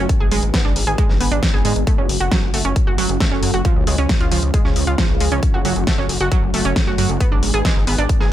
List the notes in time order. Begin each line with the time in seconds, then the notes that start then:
0.09 D3 G#3 B3 G#4, kick, closed hi-hat
0.20 G#1 D3 G#3 B3 G#4
0.32 G#1 G#3, open hi-hat
0.43 G#1 D3 G#3 B3 G#4, closed hi-hat
0.54 B3, kick, snare, closed hi-hat
0.65 G#1 D4
0.76 G#1, open hi-hat
0.87 G#1 D3 G#3 B3 G#4, closed hi-hat
0.98 D3 G#3 B3 G#4, kick, closed hi-hat
1.09 G#1, snare
1.20 G#1 D3 G#3 B3 G#4, open hi-hat
1.32 G#1 D4, closed hi-hat
1.43 D3 G#3 B3 G#4, kick, snare, closed hi-hat
1.54 G#1 G#4
1.65 G#2 D3 G#3 B3 G#4, open hi-hat
1.76 G#1, closed hi-hat
1.87 C#3 F#3 A3 F#4, kick, closed hi-hat
1.98 F#1 C#3 F#3 A3 C#4 F#4
2.09 F#1, open hi-hat
2.20 F#1 C#3 F#3 A3 F#4, closed hi-hat
2.32 F#3, kick, snare, closed hi-hat
2.43 F#1
2.54 F#1 A3, open hi-hat
2.65 F#1 C#3 F#3 A3 C#4 F#4
2.76 C#3 F#3 A3 F#4, kick, closed hi-hat
2.87 F#1 F#4
2.98 F#1 C#3 F#3 A3 F#4, open hi-hat
3.09 F#1, closed hi-hat
3.20 C#3 F#3 A3 F#4, kick, snare, closed hi-hat
3.31 F#1 C#4
3.42 F#2 C#3 F#3 A3 F#4, open hi-hat
3.54 F#1 F#4, closed hi-hat
3.65 C#3 F3 G#3 F4, kick, closed hi-hat
3.76 C#2 C#3 F3 G#3 F4
3.87 C#2 G#3, open hi-hat
3.98 C#2 C#3 F3 G#3 C#4 F4, closed hi-hat
4.09 kick, snare, closed hi-hat
4.20 C#2 F4, closed hi-hat
4.32 C#2 F3, open hi-hat
4.43 C#2 C#3 F3 G#3 F4, closed hi-hat
4.54 C#3 F3 G#3 F4, kick, closed hi-hat
4.65 C#2 C#4, snare
4.76 C#2 C#3 F3 G#3 F4, open hi-hat
4.87 C#2 F4, closed hi-hat
4.98 C#3 F3 G#3 F4, kick, snare, closed hi-hat
5.09 B1
5.20 C#2 C#3 F3 G#3 F4, open hi-hat
5.32 C#2 C#4, closed hi-hat
5.43 C#3 F#3 A3 F#4, kick, closed hi-hat
5.54 F#1 C#3 F#3 A3 F#4
5.65 F#1 F#3, open hi-hat
5.76 F#1 C#3 F#3 A3 F#4, closed hi-hat
5.87 A3, kick, snare, closed hi-hat
5.98 F#1 C#4
6.09 F#1, open hi-hat
6.20 F#1 C#3 F#3 A3 F#4, closed hi-hat
6.32 C#3 F#3 A3 F#4, kick, closed hi-hat
6.43 F#1
6.54 F#1 C#3 F#3 A3 F#4, open hi-hat
6.65 F#1 C#4, closed hi-hat
6.76 C#3 F#3 A3 F#4, kick, snare, closed hi-hat
6.87 F#1 F#4
6.98 F#2 C#3 F#3 A3 F#4, open hi-hat
7.09 F#1, closed hi-hat
7.20 D3 G#3 B3 G#4, kick, closed hi-hat
7.31 G#1 D3 G#3 B3 D4 G#4
7.43 G#1, open hi-hat
7.54 G#1 D3 G#3 B3 G#4, closed hi-hat
7.65 G#3, kick, snare, closed hi-hat
7.76 G#1
7.87 G#1 B3, open hi-hat
7.98 G#1 D3 G#3 B3 D4 G#4, closed hi-hat
8.09 D3 G#3 B3 G#4, kick, closed hi-hat
8.20 G#1 G#4, snare